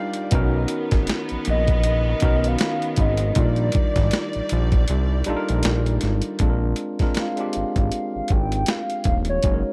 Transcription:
Already playing: G3 D4 D#4 F4 A#4 D5 F5 G5 A#5
0.14 closed hi-hat
0.31 B1 D#3 B3 C#4 D#4 F#4 A#4, kick, closed hi-hat
0.68 closed hi-hat
0.91 G#1, kick, snare, closed hi-hat
1.07 snare, closed hi-hat
1.29 A#1, closed hi-hat
1.45 A#1, closed hi-hat
1.50 D#5
1.68 kick, closed hi-hat
1.84 closed hi-hat
2.20 B1 B3 C#4 D#4 F#4, kick, closed hi-hat
2.25 A#4
2.44 F5, closed hi-hat
2.58 snare, closed hi-hat
2.82 closed hi-hat
2.96 G#1, kick, closed hi-hat
3.01 D#5
3.17 closed hi-hat
3.35 A#1 G3 D4 D#4 F4 D5, kick, closed hi-hat
3.39 A4 D5
3.45 A#4
3.56 closed hi-hat
3.72 kick, closed hi-hat
3.96 G#1, kick, snare, closed hi-hat
4.11 snare, closed hi-hat
4.33 A#1, closed hi-hat
4.49 A#1, closed hi-hat
4.72 kick, closed hi-hat
4.88 C2, closed hi-hat
5.24 A#1 G3 D4 D#4, closed hi-hat
5.29 F4 A4
5.36 A#4
5.49 A#1, closed hi-hat
5.63 A#1, snare, closed hi-hat
5.86 closed hi-hat
6.01 G#1, snare, closed hi-hat
6.22 closed hi-hat
6.39 A#1 G#3 C4 D4 F4, kick, closed hi-hat
6.43 A4
6.50 A#4
6.76 closed hi-hat
6.99 G#3 C4 D4 F4 A#4, kick, snare, closed hi-hat
7.15 snare, closed hi-hat
7.19 F5
7.36 G#3 C4 D4 F4, closed hi-hat
7.40 G4
7.53 G#1, closed hi-hat
7.76 G#1 F5, kick, closed hi-hat
7.92 closed hi-hat
8.16 G#1
8.28 G#1 G5, kick, closed hi-hat
8.52 closed hi-hat
8.66 snare, closed hi-hat
8.70 F5
8.90 closed hi-hat
9.04 D#1, kick, closed hi-hat
9.25 closed hi-hat
9.29 C#5
9.43 F#1 G#3 C#4 D#4 F#4, kick, closed hi-hat
9.47 G#4
9.53 A#4

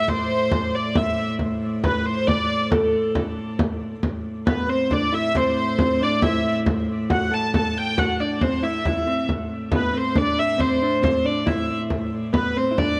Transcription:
Already playing: A2
0.08 C5, frame drum
0.51 frame drum
0.74 D5, frame drum
0.95 E5, frame drum
1.17 frame drum
1.39 frame drum
1.84 B4, frame drum
2.06 C5, frame drum
2.27 D5, frame drum
2.50 frame drum
2.71 A4, frame drum
2.94 frame drum
3.15 frame drum
3.38 frame drum
3.59 frame drum
3.81 frame drum
4.03 A2, frame drum
4.47 B3 B4, frame drum
4.69 C4 C5, frame drum
4.91 D4 D5, frame drum
5.12 E4 E5, frame drum
5.34 C4 C5, frame drum
5.78 C4, frame drum
6.01 D4 D5
6.22 E4 E5, frame drum
6.44 frame drum
6.66 frame drum
7.10 F#4 F#5, frame drum
7.31 A4 A5, frame drum
7.54 A4 A5, frame drum
7.76 G5, frame drum
7.98 F#4 F#5, frame drum
8.20 D4 D5, frame drum
8.41 C4 C5, frame drum
8.63 E4 E5
8.85 E4 E5, frame drum
9.07 C4, frame drum
9.28 A2, frame drum
9.72 B3 B4, frame drum
9.93 C4, frame drum
9.98 C5
10.15 D4 D5, frame drum
10.38 E5, frame drum
10.58 C4 C5, frame drum
10.82 D4
11.02 C4 C5, frame drum
11.25 D4 D5, frame drum
11.46 E4 E5, frame drum
11.69 frame drum
11.90 frame drum
12.33 B3 B4, frame drum
12.56 C4 C5, frame drum
12.71 E4
12.78 D4 D5, frame drum

